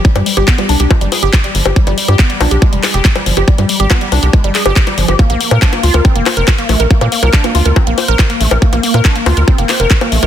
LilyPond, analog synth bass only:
\new Staff \with { instrumentName = "Analog synth bass" } { \clef bass \time 4/4 \tempo 4 = 140 r16 g,16 r16 aes,,16 r8 c,16 c,16 r16 g,,16 r16 g,,16 r8 g,,16 g,,16 | r16 g,,16 r16 g,16 r8 b,,16 b,,16 r16 f,,16 r16 f,,16 r8 g,,16 g,,16 | r16 g,16 r16 aes,,16 r8 c,16 c,16 r16 g,,16 r16 g,,16 r8 g,,16 g,,16 | r16 bes,,16 r16 bes,16 r8 d,16 d,16 r16 f,,16 r16 f,,16 r8 bes,,16 bes,,16 |
r16 bes,16 r16 c,16 r8 d,16 d,16 r16 bes,,16 r16 bes,,16 r8 bes,,16 bes,,16 | r16 bes,,16 r16 bes,16 r8 d,16 d,16 r16 f,,16 r16 f,,16 r8 bes,,16 bes,,16 | }